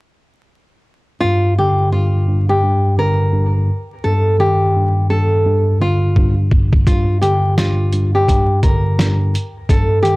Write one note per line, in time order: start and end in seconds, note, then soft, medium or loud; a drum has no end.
1.21 1.92 G2 medium
1.21 1.53 F4 loud
1.58 2.64 D3 medium
1.58 1.90 G4 medium
1.92 2.27 G2 medium
1.92 2.46 F4 medium
2.28 2.62 G2 medium
2.49 2.96 G4 medium
2.63 3.32 G2 medium
2.98 3.69 D3 medium
2.98 3.52 A#4 medium
3.33 3.69 G2 medium
4.04 4.75 G2 loud
4.04 4.36 A4 medium
4.39 5.45 D#3 medium
4.39 5.06 G4 medium
4.76 5.09 G2 medium
5.10 5.45 G2 medium
5.10 5.77 A4 medium
5.46 6.15 G2 medium
5.80 6.87 D3 medium
5.80 6.34 F4 medium
6.16 6.87 G2 medium
6.16 kick medium
6.51 kick medium
6.73 kick medium
6.87 7.57 G2 medium
6.87 7.19 F4 loud
6.87 kick loud
6.87 closed hi-hat medium
7.21 8.29 D3 medium
7.21 7.54 G4 medium
7.21 closed hi-hat medium
7.58 7.91 G2 medium
7.58 8.11 F4 medium
7.58 snare loud
7.58 closed hi-hat medium
7.92 8.27 G2 medium
7.92 closed hi-hat medium
8.15 8.61 G4 medium
8.28 8.96 G2 medium
8.28 kick medium
8.28 closed hi-hat medium
8.63 9.34 D3 medium
8.63 9.16 A#4 medium
8.63 kick medium
8.63 closed hi-hat medium
8.97 9.33 G2 medium
8.97 snare loud
8.97 closed hi-hat medium
9.35 closed hi-hat medium
9.69 10.16 G2 loud
9.69 10.01 A4 medium
9.69 kick loud
9.69 closed hi-hat medium
10.03 10.16 D#3 medium
10.03 10.16 G4 medium
10.03 closed hi-hat medium